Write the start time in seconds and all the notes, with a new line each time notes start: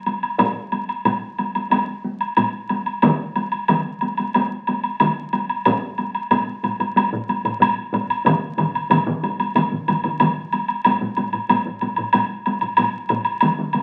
0.06 taiko high, high woodblock
0.23 taiko high, high woodblock
0.38 taiko, taiko low-mid, taiko high, high woodblock
0.56 taiko high
0.72 taiko high, high woodblock
0.89 taiko high, high woodblock
1.05 taiko low-mid, taiko high, high woodblock
1.22 taiko high
1.39 taiko high, high woodblock
1.55 taiko high, high woodblock
1.71 taiko, taiko high, high woodblock
1.89 taiko high
2.04 taiko high
2.21 taiko high, high woodblock
2.37 taiko low-mid, taiko high, high woodblock
2.54 taiko high
2.69 taiko high, high woodblock
2.86 taiko high, high woodblock
3.02 taiko, taiko mid, taiko high, high woodblock
3.20 taiko high
3.36 taiko high, high woodblock
3.52 taiko high, high woodblock
3.68 taiko mid, taiko high, high woodblock
3.86 taiko high
4.01 taiko high, high woodblock
4.17 taiko high, high woodblock
4.34 taiko, taiko high, high woodblock
4.52 taiko high
4.67 taiko high, high woodblock
4.83 taiko high, high woodblock
5.00 taiko mid, taiko high, high woodblock
5.17 taiko high
5.33 taiko high, high woodblock
5.49 taiko high, high woodblock
5.65 taiko, taiko low-mid, taiko high, high woodblock
5.83 taiko high
5.98 taiko high, high woodblock
6.15 taiko high, high woodblock
6.31 taiko low-mid, taiko high, high woodblock
6.48 taiko high
6.63 taiko low-mid, taiko high, high woodblock
6.80 taiko low-mid, taiko high, high woodblock
6.96 taiko, taiko high, high woodblock
7.13 taiko low-mid
7.29 taiko high, high woodblock
7.45 taiko low-mid, taiko high, high woodblock
7.61 taiko low-mid, taiko high, high woodblock
7.78 taiko high
7.93 taiko low-mid, taiko high, high woodblock
8.10 taiko high, high woodblock
8.25 taiko, taiko low-mid, taiko mid, taiko high, high woodblock
8.43 taiko high
8.58 taiko low-mid, taiko mid, taiko high, high woodblock
8.75 taiko high, high woodblock
8.90 taiko low-mid, taiko mid, taiko high, high woodblock
9.06 taiko low-mid, taiko mid, taiko high
9.23 taiko, taiko high, high woodblock
9.40 taiko high, high woodblock
9.55 taiko, taiko low-mid, taiko mid, taiko high, high woodblock
9.71 taiko low-mid, taiko mid, taiko high
9.88 taiko low-mid, taiko mid, taiko high, high woodblock
10.04 taiko low-mid, taiko mid, taiko high, high woodblock
10.20 taiko low-mid, taiko mid, taiko high, high woodblock
10.37 taiko high
10.53 taiko high, high woodblock
10.68 taiko high, high woodblock
10.84 taiko low-mid, taiko high, high woodblock
11.01 taiko low-mid, taiko high
11.17 taiko low-mid, taiko high, high woodblock
11.33 taiko low-mid, taiko high, high woodblock
11.49 taiko low-mid, taiko high, high woodblock
11.66 taiko low-mid, taiko high
11.81 taiko low-mid, taiko high, high woodblock
11.96 taiko low-mid, taiko high, high woodblock
12.13 taiko low-mid, taiko high, high woodblock
12.31 taiko high
12.46 taiko high, high woodblock
12.61 taiko low-mid, taiko high, high woodblock
12.77 taiko low-mid, taiko high, high woodblock
12.95 taiko high
13.09 taiko low-mid, taiko high, high woodblock
13.25 taiko high, high woodblock
13.41 taiko mid, taiko high, high woodblock
13.59 taiko mid, taiko high
13.73 taiko mid, taiko high, high woodblock